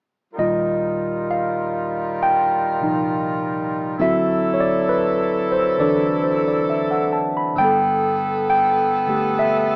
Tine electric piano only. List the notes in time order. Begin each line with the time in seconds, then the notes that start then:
0.38 D#2 A#2 D#3 G3 F4 D#5
1.31 F5
2.23 G5
2.80 A#2 C3 F3 D#4
3.99 D2 D3 F#3 C4 E4 F#4 E5
4.54 C#5
4.60 D5
4.89 B4
5.52 C5
5.78 D3 E3 D4 A4 B4 D5
6.23 C5
6.48 D5
6.70 E5
6.91 F#5
7.13 A5
7.37 B5
7.54 G2 D3
7.58 G3 B3 G5
7.64 A4
8.50 G5
9.07 D3 A3 G4
9.39 E5